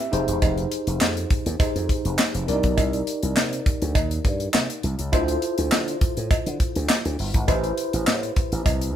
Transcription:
0.00 tine electric piano G4 E5
0.12 slap bass F1, tine electric piano D#4 G4 G#4 C5, closed hi-hat
0.28 slap bass E1, closed hi-hat
0.42 slap bass F1, kick, closed hi-hat, cowbell
0.58 closed hi-hat
0.72 closed hi-hat
0.87 slap bass F1, closed hi-hat
1.01 slap bass F2, snare, clap, cowbell
1.17 closed hi-hat
1.30 kick, closed hi-hat
1.46 slap bass D#2, closed hi-hat
1.59 tine electric piano D#4 G4 G#4 C5, kick, closed hi-hat, cowbell
1.76 slap bass F2, closed hi-hat
1.89 kick, closed hi-hat
2.05 slap bass F1, closed hi-hat
2.18 snare, clap, cowbell
2.34 slap bass F1, closed hi-hat
2.47 slap bass C2, tine electric piano D4 G4 A#4 D5, closed hi-hat
2.54 tine electric piano D#4
2.63 slap bass B1, kick, closed hi-hat
2.77 slap bass C2, kick, closed hi-hat, cowbell
2.93 closed hi-hat
3.07 closed hi-hat
3.23 slap bass C2, closed hi-hat
3.36 slap bass C3, snare, clap, cowbell
3.53 closed hi-hat
3.66 kick, closed hi-hat
3.82 slap bass D2, closed hi-hat
3.95 slap bass D#2, kick, closed hi-hat, cowbell
4.11 closed hi-hat
4.25 slap bass G2, kick, closed hi-hat
4.40 closed hi-hat
4.53 slap bass C3, snare, clap, cowbell
4.70 closed hi-hat
4.83 slap bass C2, closed hi-hat
4.99 slap bass C#2, closed hi-hat
5.12 slap bass D2, tine electric piano E4 F4 A4 C5, kick, closed hi-hat, cowbell
5.28 closed hi-hat
5.42 closed hi-hat
5.58 slap bass D2, closed hi-hat
5.72 slap bass D3, snare, clap, cowbell
5.88 closed hi-hat
6.01 kick, closed hi-hat
6.17 slap bass A2, closed hi-hat
6.31 muted slap bass stroke, kick, closed hi-hat, cowbell
6.46 slap bass D3, closed hi-hat
6.60 kick, closed hi-hat
6.76 slap bass D2, closed hi-hat
6.88 snare, clap, cowbell
7.05 slap bass D2, closed hi-hat
7.19 slap bass G1, open hi-hat
7.34 slap bass G#1, kick, closed hi-hat
7.47 slap bass A1, tine electric piano E4 G4 B4 C5, kick, closed hi-hat, cowbell
7.64 closed hi-hat
7.78 closed hi-hat
7.93 slap bass A1, closed hi-hat
8.07 slap bass A2, snare, clap, cowbell
8.23 closed hi-hat
8.36 kick, closed hi-hat
8.52 slap bass A1, closed hi-hat
8.66 slap bass C2, kick, closed hi-hat, cowbell
8.81 closed hi-hat

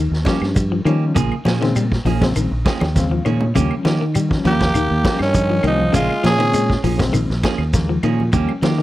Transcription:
Already playing: clean electric guitar D#3
0.11 fingered electric bass D#2, snare
0.25 reed electric piano F3 G3 C#4, clean electric guitar A#3 C#4 G4, kick, snare, ride bell, high conga, shekere
0.42 fingered electric bass G2, snare, claves
0.55 kick, ride bell, high conga, shekere
0.72 clean electric guitar F3
0.85 fingered electric bass D#3, clean electric guitar D#3 A#3 C#4 G4, reed electric piano F3 G3 C#4, ride bell, claves, shekere
1.15 fingered electric bass A#1, clean electric guitar C#3 F3 A#3 G#4, muted clean electric guitar stroke, kick, ride bell, high conga, low conga, shekere
1.32 claves
1.45 fingered electric bass A#2, clean electric guitar F3 A#3 C#4 G#4, snare, ride bell, high conga, shekere
1.61 reed electric piano C#3 G#3 C4, clean electric guitar D#3, snare, ride bell
1.76 clean electric guitar G3, ride bell, high conga, claves, shekere
1.92 kick, snare
2.05 fingered electric bass A#1, clean electric guitar F3 A#3 C#4 G#4, open hi-hat, high conga, low conga, shekere
2.20 reed electric piano C#3 G#3 C4, kick, snare, ride bell, high conga, low conga
2.36 fingered electric bass A#1, clean electric guitar D#3, ride bell, high conga, claves, shekere
2.51 fingered electric bass A#1
2.65 clean electric guitar F3 A#3 C#4 G#4, reed electric piano G5, kick, snare, ride bell, high conga, shekere
2.81 fingered electric bass D#2, snare, high conga, claves
2.94 reed electric piano C#3 G#3 C4 F5, kick, snare, ride bell, high conga, shekere
3.11 clean electric guitar F3, low conga
3.25 fingered electric bass A#2, clean electric guitar D#3 F3 A#3 C#4 G#4, reed electric piano C#5, ride bell, low conga, claves, shekere
3.41 low conga
3.55 fingered electric bass D#2, clean electric guitar C#3 A#3 C#4 G4, reed electric piano F3 G3 C#4, kick, ride bell, high conga, low conga, shekere
3.71 claves
3.85 fingered electric bass D#3, clean electric guitar F3 A#3 C#4 G4, snare, ride bell, high conga, shekere
4.01 clean electric guitar D#3
4.15 clean electric guitar G3, ride bell, high conga, claves, shekere
4.29 reed electric piano F3 G3 C#4, kick, snare
4.44 fingered electric bass D#2, clean electric guitar F3 A#3 C#4 G4, trombone A#3, tenor saxophone G4, ride bell, high conga, low conga, shekere
4.60 clean electric guitar C#4 G4, kick, snare, ride bell, high conga, low conga
4.74 fingered electric bass D#2, clean electric guitar D#3, ride bell, claves, shekere
4.91 fingered electric bass D#2
5.03 reed electric piano F3 G3 C#4, clean electric guitar A#3 C#4, muted clean electric guitar stroke, kick, snare, ride bell, high conga, shekere
5.19 fingered electric bass G2, trombone D#3, tenor saxophone C#4, snare, claves
5.34 kick, ride bell, high conga, shekere
5.50 clean electric guitar F3
5.63 fingered electric bass C2, clean electric guitar D#3 A#3 C#4 G4, reed electric piano F3 G3 C#4, trombone F3, tenor saxophone D#4, ride bell, claves, shekere
5.81 high conga
5.93 fingered electric bass A#1, clean electric guitar C#3 A#3 C#4 G#4, tenor saxophone F4, muted clean electric guitar stroke, kick, ride bell, high conga, low conga, shekere
5.97 trombone G#3
6.10 claves
6.23 fingered electric bass A#2, clean electric guitar F3 A#3 C#4 G#4, trombone C#4, tenor saxophone G#4, snare, ride bell, high conga, shekere
6.39 reed electric piano C#3 G#3 C4, clean electric guitar D#3, ride bell
6.54 clean electric guitar G#3, ride bell, high conga, claves, shekere
6.70 kick, snare
6.83 fingered electric bass A#1, clean electric guitar F3 A#3 C#4 G#4, open hi-hat, high conga, low conga, shekere
6.98 reed electric piano C#3 G#3 C4, kick, snare, ride bell, high conga, low conga
7.13 fingered electric bass A#1, clean electric guitar D#3, ride bell, claves, shekere
7.30 fingered electric bass A#1, snare
7.43 clean electric guitar F3 A#3 C#4 G#4, kick, snare, ride bell, high conga, shekere
7.58 fingered electric bass D#2, claves
7.73 reed electric piano C#3 G#3 A#3, kick, snare, ride bell, high conga, shekere
7.89 clean electric guitar F3
8.03 fingered electric bass A#2, clean electric guitar D#3 F3 A#3 C#4 G#4, ride bell, claves, shekere
8.20 high conga
8.33 fingered electric bass D#2, reed electric piano F3 G3 C#4, clean electric guitar A#3 C#4 G4, muted clean electric guitar stroke, kick, ride bell, high conga, low conga, shekere
8.49 claves
8.62 fingered electric bass D#3, clean electric guitar F3 A#3 G4, muted clean electric guitar stroke, snare, ride bell, high conga, shekere
8.78 clean electric guitar D#3

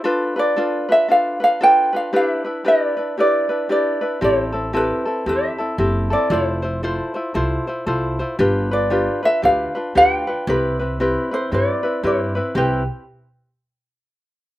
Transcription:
0.04 ukulele D4 F4 A4 B4
0.36 ukulele D4 F4 B4 D5
0.56 ukulele D4 F4 A4 B4
0.89 ukulele D4 F4 B4 E5
1.08 ukulele D4 F4 A4 B4 F5
1.40 ukulele D4 F4 B4 F5
1.61 ukulele D4 F4 A4 B4 G5
1.93 ukulele D4 F4 B4 F5
2.13 ukulele D4 E4 G4 B4 F5
2.27 ukulele E5
2.45 ukulele D4 E4 B4
2.65 ukulele D4 E4 G4 B4 D5
2.97 ukulele D4 E4 B4
3.18 ukulele D4 E4 G4 B4 D5
3.49 ukulele D4 E4 B4
3.69 ukulele D4 E4 G4 B4 D5
4.01 ukulele D4 E4 B4
4.21 upright bass A1, ukulele C4 E4 G4 A4 C5
4.52 ukulele C4 E4 A4
4.73 ukulele C4 E4 G4 A4 B4
5.05 ukulele C4 E4 A4
5.26 upright bass E2, ukulele C4 E4 G4 A4 E5
5.58 ukulele C4 E4 A4
5.78 upright bass F#1, ukulele C4 E4 G4 A4
6.10 ukulele C4 E4 A4 D5
6.30 upright bass F1, ukulele E4 F4 A4 C5
6.62 ukulele E4 F4 C5
6.83 ukulele E4 F4 A4 C5
7.14 ukulele E4 F4 C5
7.34 upright bass C2, ukulele E4 F4 A4 C5
7.67 ukulele E4 F4 C5
7.86 upright bass C2, ukulele E4 F4 A4 C5
8.19 ukulele E4 F4 C5
8.39 upright bass G1, ukulele D4 F4 G4 B4
8.71 ukulele D4 F4 B4 D5
8.90 ukulele D4 F4 G4 B4
9.23 ukulele D4 F4 B4 E5
9.42 upright bass D2, ukulele D4 F4 G4 B4 F5
9.75 ukulele D4 F4 B4
9.95 upright bass D2, ukulele D4 F4 G4 B4 G5
10.27 ukulele D4 F4 B4
10.47 upright bass C2, ukulele C4 E4 G4 B4
10.79 ukulele C4 E4 B4
11.00 ukulele C4 E4 G4 B4
11.31 ukulele C4 E4 B4 C5
11.51 upright bass G2, ukulele C4 E4 G4 B4 D5
11.83 ukulele C4 E4 B4
12.03 upright bass G2, ukulele C4 E4 G4 B4 C5
12.35 ukulele C4 E4 B4
12.55 upright bass C2, ukulele C4 E4 G4 B4

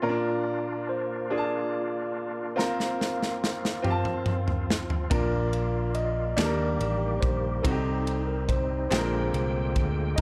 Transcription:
Already playing: tonewheel organ F4
0.02 grand piano A#2 C#4 F4 A#4, tonewheel organ A#3 D4, tine electric piano F4 A#4 D5
0.09 grand piano D4
0.89 tine electric piano C5
1.30 grand piano D4 F4 G#4, tine electric piano F4 A#4 D5
1.38 grand piano A5
2.56 grand piano C4 F4 A#4, tonewheel organ C4, tine electric piano A#4 C5 F5, snare
2.80 snare
3.01 snare
3.22 snare
3.44 snare
3.65 snare
3.82 tonewheel organ F3, grand piano C4 F4 G4, mid tom
3.90 grand piano A5
4.05 mid tom
4.26 mid tom
4.48 floor tom
4.70 snare
4.90 floor tom
5.10 fingered electric bass A#1, grand piano A#2 D4 F4 A#4, tonewheel organ A#3, tine electric piano F4 A#4 D5, kick, ride bell
5.53 ride bell
5.95 tine electric piano D#5, ride bell
6.37 fingered electric bass D#2, grand piano D#3 G3 A#3 D4 D#4 A4, tonewheel organ D#3 G3 G4, tine electric piano G4 A#4 D5, snare, clap, ride bell
6.45 grand piano A#4
6.79 fingered electric bass A1, ride bell
7.21 fingered electric bass A#1, tine electric piano C5, kick, ride bell
7.62 fingered electric bass C2, grand piano C3 C4 D#4 F#4, tonewheel organ G3 C4 D#4, tine electric piano C4 D#4 A4, kick, ride bell
7.71 grand piano G4
8.07 ride bell
8.26 tine electric piano A#4
8.49 tine electric piano C5, kick, ride bell
8.90 fingered electric bass A#1, grand piano A#2 G#3 C4 D4 G#4 G5, tonewheel organ D3 G#3 A#3 G5, tine electric piano F4 G#4 C5, snare, clap, ride bell
8.98 grand piano A#4
9.34 fingered electric bass C2, ride bell
9.76 fingered electric bass D2, kick, ride bell
10.16 tonewheel organ A#3 D#4, grand piano D#4 F4, tine electric piano D#5, ride bell

